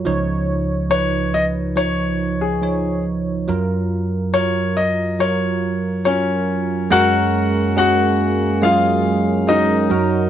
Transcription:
<<
  \new Staff \with { instrumentName = "Grand piano" } { \time 4/4 \key fis \major \tempo 4 = 70 r4 cis''8 dis''8 cis''8. gis'8. r8 | r4 cis''8 dis''8 cis''4 <cis' cis''>4 | <fis' fis''>4 <fis' fis''>4 <eis' eis''>4 <dis' dis''>4 | }
  \new Staff \with { instrumentName = "Tine electric piano" } { \time 4/4 \key fis \major <eis dis' cis''>4 <eis dis' b'>4 <eis dis' cis''>4 <eis dis' cis''>4 | <fis eis' ais'>4 <fis eis' ais'>4 <fis eis' ais'>4 <fis eis' ais'>4 | <gis cis' fis' ais'>4 <gis cis' fis' gis'>4 <fis gis cis' gis'>4 <gis cis' fis' ais'>8 <fis dis' fis' ais'>8 | }
  \new Staff \with { instrumentName = "Tine electric piano" } { \clef bass \time 4/4 \key fis \major <cis, cis>1 | fis,1 | fis,2.~ fis,8 fis,8 | }
  \new Staff \with { instrumentName = "French horn section" } { \time 4/4 \key fis \major << { r1 | r1 | <ais gis'>2.~ <ais gis'>8 dis'8 | } \\ { r1 | r1 | <fis, fis>1 | } >> }
>>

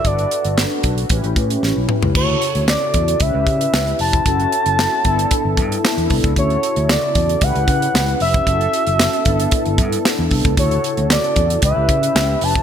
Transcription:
<<
  \new Staff \with { instrumentName = "Analog synth lead" } { \time 4/4 \key d \major \tempo 4 = 114 d''4 r2. | cis''4 d''4 e''4. a''8~ | a''2.~ a''8 r8 | cis''4 d''4 fis''4. e''8~ |
e''2.~ e''8 r8 | cis''4 d''4 e''4. a''8 | }
  \new Staff \with { instrumentName = "Analog polysynth" } { \time 4/4 \key d \major <d' fis' a' b'>2 <cis' e' g' b'>2 | <cis e' fis' g' a'>2 <cis' e' g' b'>2 | <cis' e' fis' a'>4. <b d' e' a'>2~ <b d' e' a'>8 | <cis e' fis' a'>2 <cis' e' g' b'>2 |
<cis' e' fis' a'>4. <b d' e' a'>2~ <b d' e' a'>8 | <cis e' fis' a'>2 <cis' e' g' b'>2 | }
  \new Staff \with { instrumentName = "Fingered electric bass" } { \clef bass \time 4/4 \key d \major g,,8 r16 g,,8 r16 b,,8 a,,16 a,,16 a,8 a,,16 b,,16 r16 cis,16 | d,8 r16 d,8 r16 e,8 cis,16 cis,16 cis8 cis,8 f,,8 | fis,,8 r16 fis,,8 r16 g,,8 r16 g,,16 g,8 r16 e,16 c,16 cis,16 | d,8 r16 d,8 r16 e,8 cis,16 cis,16 cis8 cis,8 f,,8 |
fis,,8 r16 fis,,8 r16 g,,8 r16 g,,16 g,8 r16 e,16 c,16 cis,16 | d,8 r16 d,8 r16 e,8 cis,16 cis,16 cis8 cis,8 f,,8 | }
  \new DrumStaff \with { instrumentName = "Drums" } \drummode { \time 4/4 <hh bd>16 hh16 hh16 hh16 <hc sn>8 <hh bd>16 hh16 <hh bd>16 hh16 <hh bd>16 hh16 sn8 toml16 tomfh16 | <cymc bd>8 hh16 hh16 <hc sn>8 <hh bd>16 hh16 <hh bd>8 <hh bd>16 hh16 <hc sn>16 hh16 hho16 <hh bd>16 | <hh bd>16 hh16 hh16 hh16 <hc sn>8 <hh bd>16 hh16 <hh bd>8 <hh bd>16 hh16 <hc sn>16 hh16 <hho bd>16 <hh bd>16 | <hh bd>16 hh16 hh16 hh16 <hc sn>8 <hh bd>16 hh16 <hh bd>16 hh16 <hh bd>16 hh16 <hc sn>16 hh16 hho16 <hh bd>16 |
<hh bd>16 hh16 hh16 hh16 <hc sn>16 hh16 <hh bd>16 hh16 <hh bd>16 hh16 <hh bd>16 hh16 <hc sn>8 <hho bd>16 <hh bd>16 | <hh bd>16 hh16 hh16 hh16 <hc sn>16 hh16 <hh bd>16 hh16 <hh bd>8 <hh bd>16 hh16 <hc sn>8 hho16 bd16 | }
>>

